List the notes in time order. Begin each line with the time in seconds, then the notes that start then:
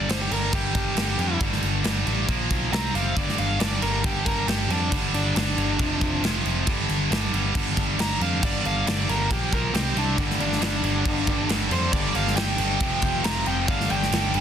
0.00 D5
0.08 G1 G2 D3 G3 C5, snare, crash
0.21 G4
0.30 G1 G2 D3 G3 A#4, crash
0.51 G1 G2 D3 G3 G4, kick, crash
0.75 G1, kick, crash
0.95 G1 G2 D3 G3, snare, crash
1.18 F2 G2 D3 G3, crash
1.40 G1 G2 D3 G3, kick, crash
1.53 snare
1.62 G1, crash
1.84 G1 G2 D3 G3, snare, crash
2.06 A1 G2 D3 G3, crash
2.28 A#1 A#2 F3 A#3, kick, crash
2.51 B1, kick, crash
2.72 C2 C3 G3 C4 A#5, snare, crash
2.94 F#1 C3 G3 C4 F5, crash
3.16 G1 G2 D3 G3 D5, kick, crash
3.29 snare
3.38 G1 F5, crash
3.59 G1 G2 D3 G3 D5, snare, crash
3.82 G1 G2 D3 G3 A#4, crash
4.02 G1 G2 D3 G3 G4, kick, crash
4.26 G1 A#4, kick, crash
4.46 G1 G2 D3 G3 G4, snare, crash
4.69 F2 G2 D3 G3 D4, crash
4.90 G1 G2 D3 G3, kick, crash
5.13 G1 D4, crash
5.35 G1 G2 D3 G3 D4, snare, crash
5.57 G1 G2 D3 G3, crash
5.79 F1 F2 C3 F3, kick, crash
6.01 F1, kick, crash
6.22 F1 F2 C3 F3, snare, crash
6.43 F1 F2 C3 F3, crash
6.67 G1 G2 D3 G3, kick, crash
6.89 G1, crash
7.11 G1 G2 D3 G3, snare, crash
7.32 G1 G2 D3 G3, crash
7.54 G1 G2 D3 G3, kick, crash
7.77 G1, kick, crash
7.98 G1 G2 D3 G3 A#5, snare, crash
8.20 F2 G2 D3 G3 F5, crash
8.43 G1 G2 D3 G3 D5, kick, crash
8.65 G1 F5, crash
8.86 G1 G2 D3 G3 D5, snare, crash
9.08 G1 G2 D3 G3 A#4, crash
9.30 A#1 A#2 F3 A#3 G4, kick, crash
9.52 B1 A#4, kick, crash
9.73 C2 C3 G3 C4 G4, snare, crash
9.95 C2 C3 G3 C4 D4, crash
10.17 G2 D3 G3, kick, crash
10.31 snare
10.39 G1 D4, crash
10.52 snare
10.61 G1 G2 D3 G3 D4, snare, crash
10.82 G1 G2 D3 G3, crash
11.05 G1 G2 D3 G3, kick, crash
11.27 G1, kick, crash
11.49 G1 G2 D3 G3, snare, crash
11.71 F2 G2 D3 G3 C5, crash
11.93 G1 G2 D3 G3 D5, kick, crash
12.15 G1 F5, crash
12.27 snare
12.36 G1 G2 D3 G3 G5, snare, crash
12.58 G1 G2 D3 G3, crash
12.80 F1 F2 C3 F3, kick, crash
13.02 F1, kick, crash
13.23 F1 F2 C3 F3 A#5, snare, crash
13.46 F1 F2 C3 F3 G5, crash
13.68 G1 G2 D3 G3 F5, kick, crash
13.80 snare
13.90 G1 G5, crash
14.03 snare
14.11 G1 G2 D3 G3, snare, crash
14.33 G1 G2 D3 G3, crash